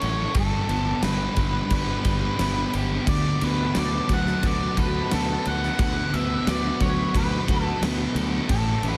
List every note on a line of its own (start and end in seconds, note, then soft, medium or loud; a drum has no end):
0.00 0.26 A1 medium
0.00 0.36 G3 medium
0.00 0.36 C#4 medium
0.00 0.36 E4 medium
0.00 0.36 A4 medium
0.00 0.37 C#5 loud
0.00 crash medium
0.34 0.59 G1 loud
0.34 2.05 G2 medium
0.34 1.03 A4 loud
0.34 kick loud
0.34 crash medium
0.69 0.93 G1 medium
0.69 1.72 B3 medium
0.69 crash medium
1.02 1.26 G1 loud
1.02 2.73 G3 medium
1.02 1.72 D4 medium
1.02 1.73 B4 medium
1.02 snare loud
1.02 crash medium
1.36 1.60 G1 medium
1.36 3.08 G3 medium
1.36 2.05 D4 medium
1.36 kick medium
1.36 crash medium
1.70 1.94 G1 medium
1.70 2.40 B3 medium
1.70 3.76 D4 medium
1.70 2.70 B4 medium
1.70 kick medium
1.70 crash medium
2.05 2.28 G1 medium
2.05 4.09 D4 medium
2.05 2.72 G4 medium
2.05 kick medium
2.05 crash medium
2.39 2.63 G1 medium
2.39 3.42 B3 medium
2.39 snare loud
2.39 crash medium
2.73 2.97 G1 medium
2.73 3.08 G4 medium
2.73 crash medium
3.07 3.30 D2 loud
3.07 4.77 D3 medium
3.07 8.46 B4 medium
3.07 3.43 D5 loud
3.07 8.46 F#5 medium
3.07 5.76 A5 medium
3.07 kick loud
3.07 crash loud
3.41 3.65 D2 medium
3.41 4.43 B3 medium
3.41 3.77 B4 medium
3.41 crash medium
3.75 3.99 D2 loud
3.75 5.45 F#3 medium
3.75 4.43 F#4 medium
3.75 4.11 D5 medium
3.75 snare loud
3.75 crash medium
4.09 4.32 D2 medium
4.09 5.79 F#3 medium
4.09 4.77 F#4 medium
4.09 kick medium
4.09 crash medium
4.13 4.46 F#5 loud
4.26 snare soft
4.43 4.66 D2 loud
4.43 5.11 B3 medium
4.43 6.13 F#4 medium
4.43 4.79 D5 loud
4.43 kick loud
4.43 crash medium
4.77 5.01 D2 medium
4.77 6.47 F#4 medium
4.77 5.47 A4 medium
4.77 5.12 B4 medium
4.77 kick medium
4.77 crash medium
5.11 5.35 D2 medium
5.11 6.13 B3 medium
5.11 5.47 A4 medium
5.11 snare loud
5.11 crash medium
5.45 5.69 D2 medium
5.45 7.19 A4 medium
5.45 5.80 F#5 medium
5.45 crash medium
5.63 snare soft
5.79 6.02 D2 medium
5.79 7.49 D3 medium
5.79 6.15 F#5 loud
5.79 8.47 B5 medium
5.79 kick loud
5.79 crash medium
6.13 6.36 D2 medium
6.13 7.15 B3 medium
6.13 6.48 E5 medium
6.13 crash medium
6.47 6.70 D2 medium
6.47 8.17 F#3 medium
6.47 7.15 F#4 medium
6.47 6.81 D5 loud
6.47 snare loud
6.47 crash medium
6.80 7.04 D2 medium
6.80 8.50 F#3 medium
6.80 7.48 F#4 medium
6.80 7.15 C#5 loud
6.80 kick medium
6.80 crash medium
7.15 7.38 D2 medium
7.15 7.81 B3 medium
7.15 8.50 F#4 medium
7.15 7.63 B4 medium
7.15 kick medium
7.15 crash medium
7.48 7.72 D2 medium
7.48 8.50 F#4 medium
7.48 8.16 A4 medium
7.48 kick medium
7.48 crash medium
7.63 7.79 A4 medium
7.81 8.05 D2 medium
7.81 8.50 B3 medium
7.81 snare loud
7.81 crash medium
8.15 8.38 D2 medium
8.15 8.50 A4 medium
8.15 crash medium
8.48 8.73 A1 loud
8.48 8.97 A2 medium
8.48 8.97 A4 medium
8.48 8.85 A4 medium
8.48 8.97 E5 medium
8.48 8.97 G5 medium
8.48 8.97 C#6 medium
8.48 kick loud
8.48 crash loud
8.83 8.97 A1 medium
8.83 8.97 C#4 medium
8.83 crash medium
8.88 8.97 B4 medium